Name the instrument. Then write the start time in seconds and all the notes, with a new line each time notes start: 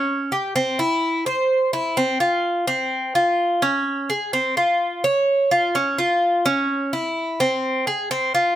cuban tres
Already playing: C#4
0.32 G4
0.56 C4
0.79 E4
1.26 C5
1.73 E4
1.97 C4
2.20 F4
2.67 C4
3.15 F4
3.62 C#4
4.10 G#4
4.33 C4
4.57 F4
5.04 C#5
5.51 F4
5.75 C#4
5.98 F4
6.46 C#4
6.93 E4
7.40 C4
7.87 G#4
8.11 C4
8.35 F4